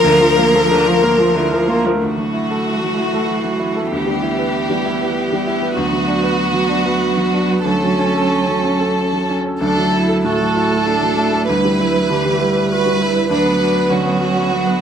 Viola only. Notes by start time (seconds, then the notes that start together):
0.04 D3
0.22 F3
0.38 A#3
0.55 F3
0.71 D3
0.87 F3
1.03 A#3
1.18 F3
1.35 D3
1.52 F3
1.68 A#3
1.86 F3
2.01 A3
3.92 B3
7.65 C#4
9.61 D4
9.94 E4
10.24 F#4
10.86 D4
11.49 E4
12.09 G4
12.72 F#4
13.01 E4
13.30 D4
13.61 D4
13.90 C#4
14.52 B3